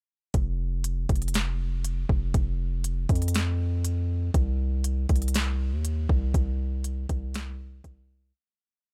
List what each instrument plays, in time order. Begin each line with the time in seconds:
0.34 808-style bass F1, kick, closed hi-hat
0.84 closed hi-hat
1.09 808-style bass F1, kick, closed hi-hat
1.16 closed hi-hat
1.22 closed hi-hat
1.28 closed hi-hat
1.34 snare, closed hi-hat
1.85 closed hi-hat
2.09 808-style bass F1, kick
2.34 808-style bass F1, kick, closed hi-hat
2.84 closed hi-hat
3.09 808-style bass F2, kick, closed hi-hat
3.15 closed hi-hat
3.22 closed hi-hat
3.28 closed hi-hat
3.34 snare, closed hi-hat
3.85 closed hi-hat
4.34 808-style bass C2, kick, closed hi-hat
4.84 closed hi-hat
5.09 808-style bass C2, kick, closed hi-hat
5.16 closed hi-hat
5.22 closed hi-hat
5.28 closed hi-hat
5.34 snare, closed hi-hat
5.72 808-style bass D#2
5.85 closed hi-hat
6.09 808-style bass C2, kick
6.34 808-style bass C2, kick, closed hi-hat
6.84 closed hi-hat
7.09 808-style bass C2, kick, closed hi-hat
7.34 snare, closed hi-hat
7.84 808-style bass C2, kick, closed hi-hat